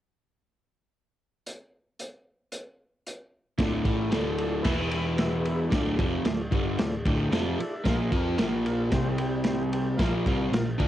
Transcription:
1.47 closed hi-hat
1.99 closed hi-hat
2.52 closed hi-hat
3.07 closed hi-hat
3.58 picked electric bass D1, overdriven electric guitar D2 A2 D3, transistor combo organ F4 A4 D5, kick, snare, ride
3.85 picked electric bass A1, overdriven electric guitar A2 E3 A3, transistor combo organ F4 A4 D5, kick, ride
4.10 picked electric bass D1, overdriven electric guitar D2 A2 D3, transistor combo organ F4 A4 D5, snare, ride
4.38 transistor combo organ F4 A4 D5, ride
4.62 picked electric bass E1, overdriven electric guitar E2 B2, transistor combo organ E4 B4 E5, kick, snare, ride
4.66 overdriven electric guitar E3
4.88 transistor combo organ E4 B4 E5, ride
5.16 transistor combo organ E4 B4 E5, snare, ride
5.41 transistor combo organ E4 B4 E5
5.45 ride
5.69 picked electric bass D1, overdriven electric guitar D2 A2 D3, transistor combo organ F4 A4 D5, kick, ride
5.73 snare
5.98 picked electric bass F1, overdriven electric guitar F2 C3 F3, transistor combo organ F4 A4 D5, kick, ride
6.23 picked electric bass D1, overdriven electric guitar D2 A2, transistor combo organ F4 A4 D5, snare, ride
6.51 picked electric bass G1, overdriven electric guitar G2 D3 G3, transistor combo organ F4 A4 D5, kick, ride
6.78 picked electric bass D1, overdriven electric guitar D2 A2, transistor combo organ F4 A4 D5, snare, ride
7.06 picked electric bass D1, overdriven electric guitar D2 A2 D3, transistor combo organ F4 A4 D5 G5, kick, ride
7.31 picked electric bass F1, overdriven electric guitar F2 C3 F3, transistor combo organ F4 A4 D5 A5, snare, ride
7.58 transistor combo organ F4 A4 D5 E5, muted overdriven electric guitar stroke, ride
7.84 picked electric bass A#1, overdriven electric guitar A#2 F3 A#3, transistor combo organ F4 A#4 F5, kick, snare, ride
8.10 picked electric bass F2, overdriven electric guitar F3 C4, transistor combo organ F4 A#4 F5, kick, ride
8.14 overdriven electric guitar F4
8.36 picked electric bass A#1, overdriven electric guitar A#2 F3 A#3, transistor combo organ F4 A#4 F5, snare, ride
8.66 transistor combo organ F4 A#4 F5, ride
8.91 picked electric bass C2, overdriven electric guitar C3 G3 C4, transistor combo organ G4 C5 G5, kick, snare, ride
9.18 transistor combo organ G4 C5 G5, ride
9.44 transistor combo organ G4 C5 G5, snare, ride
9.73 transistor combo organ G4 C5 G5, ride
9.97 picked electric bass A#1, overdriven electric guitar A#2 F3 A#3, transistor combo organ F4 A#4 F5, kick, snare, ride
10.25 picked electric bass C2, overdriven electric guitar C3 G3 C4, transistor combo organ F4 A#4 F5, kick, ride
10.50 picked electric bass A#1, overdriven electric guitar A#2 F3, transistor combo organ F4 A#4 F5, snare, ride
10.78 picked electric bass D2, overdriven electric guitar D3 A3 D4, transistor combo organ F4 A#4 F5, kick, ride

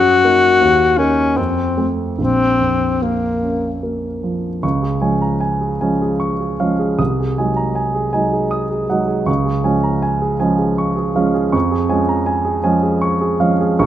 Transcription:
Already playing: grand piano F#2, alto saxophone F#4
0.24 grand piano A#3 D#4
0.61 grand piano D#2
0.98 grand piano A#3 D#4, alto saxophone C#4
1.37 grand piano F2, alto saxophone C4
1.77 grand piano A3 C4
2.18 grand piano A#1, alto saxophone C4
2.60 grand piano F2
3.02 grand piano A#3, alto saxophone A#3
3.43 grand piano C#4
3.83 grand piano A#3
4.23 grand piano F3
4.63 grand piano C#2 C#6
4.82 grand piano G#4
5.01 grand piano F3 G#3 C#4 G#5
5.22 grand piano A#5
5.40 grand piano G#5
5.61 grand piano G#4
5.81 grand piano F3 G#3 C#4 G#5
6.01 grand piano G#4
6.20 grand piano C#6
6.40 grand piano G#4
6.60 grand piano F3 G#3 C#4 F5
6.79 grand piano G#4
6.99 grand piano C2 D#6
7.19 grand piano G#4
7.38 grand piano F#3 G#3 D#4 G#5
7.57 grand piano A#5
7.75 grand piano G#5
7.95 grand piano G#4
8.13 grand piano F#3 G#3 D#4 G#5
8.33 grand piano G#4
8.51 grand piano D#6
8.70 grand piano G#4
8.89 grand piano F#3 G#3 D#4 F#5
9.08 grand piano G#4
9.26 grand piano C#2 C#6
9.45 grand piano G#4
9.64 grand piano F3 G#3 C#4 G#5
9.83 grand piano A#5
10.02 grand piano G#5
10.22 grand piano G#4
10.40 grand piano F3 G#3 C#4 G#5
10.59 grand piano G#4
10.78 grand piano C#6
10.97 grand piano G#4
11.15 grand piano F3 G#3 C#4 F5
11.34 grand piano G#4
11.52 grand piano F2 C#6
11.71 grand piano G#4
11.89 grand piano F3 G#3 C#4 G#5
12.09 grand piano A#5
12.26 grand piano G#5
12.45 grand piano G#4
12.64 grand piano F3 G#3 C#4 G#5
12.83 grand piano G#4
13.02 grand piano C#6
13.21 grand piano G#4
13.40 grand piano F3 G#3 C#4 F5
13.60 grand piano G#4
13.79 grand piano A#1 C#6

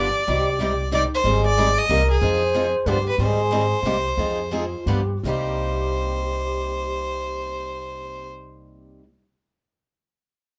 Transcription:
Already playing: bansuri G4, violin D5
0.27 upright bass C2, steel-string acoustic guitar C3 G3 C4 D#4 G4 D5, bansuri F#4
0.40 bansuri G4
0.60 steel-string acoustic guitar C3 G3 C4 D#4 G4 D5
0.92 steel-string acoustic guitar C3 G3 C4 D#4 G4 D5, bansuri E4, violin D5
0.97 bansuri D#4
1.14 violin C5
1.24 upright bass G#1, steel-string acoustic guitar D#3 G3 C4 D#4 G#4, bansuri G#4
1.46 violin D5
1.57 steel-string acoustic guitar D#3 G3 C4 D#4 G#4
1.78 violin D#5
1.89 upright bass C2, steel-string acoustic guitar C3 G3 A#3 D#4 G4, bansuri A#4
2.11 violin G#4
2.21 upright bass F2, steel-string acoustic guitar F3 C4 D#4 G#4, bansuri C5
2.55 steel-string acoustic guitar F3 C4 D#4 G#4
2.86 upright bass G2, steel-string acoustic guitar D3 F3 B3 D4 G4, bansuri G4, violin C5
3.09 violin B4
3.18 upright bass G#2, steel-string acoustic guitar D#3 G3 C4 D#4 G#4, bansuri G#4, violin C5
3.51 steel-string acoustic guitar D#3 G3 C4 D#4 G#4
3.83 upright bass C2, steel-string acoustic guitar C3 G3 A#3 D#4 G4, bansuri G#4
3.89 bansuri G4
4.17 upright bass F2, steel-string acoustic guitar F3 C4 D#4 G#4, bansuri G#4 A4
4.51 steel-string acoustic guitar F3 C4 D#4 G#4, bansuri F4
4.86 upright bass G2, steel-string acoustic guitar D3 F3 B3 D4 G4, bansuri G4
5.23 upright bass C2, steel-string acoustic guitar C3 G3 A#3, bansuri G#4, violin C5
5.28 steel-string acoustic guitar D#4 G4, bansuri G4

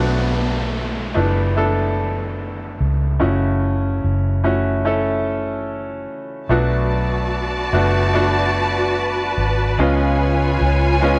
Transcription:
Already playing: fingered electric bass B1, grand piano A3 B3 D4 F#4, downlifter
1.14 fingered electric bass F#1, grand piano A3 B3 D4 E4
1.56 grand piano A3 B3 D4 A4
2.80 fingered electric bass C#2
3.20 fingered electric bass F#1, grand piano C#3 A3 C#4 E4 F#4
4.04 fingered electric bass F#1
4.44 grand piano A3 C#4 E4 F#4
4.85 grand piano A3 C#4 E4 A4
6.49 fingered electric bass B1, grand piano B2 F#3 A3 B3 D4 F#4, string section F#4 B4 D5 A5
7.73 fingered electric bass F#1, grand piano A3 B3 D4 F#4
8.14 grand piano A3 B3 D4 F#4
9.37 fingered electric bass G#1
9.78 fingered electric bass C#2, grand piano C#3 G#3 B3 C#4 F4, string section F4 C#5 G#5
10.61 fingered electric bass C#2
11.01 grand piano G#3 B3 C#4 F4

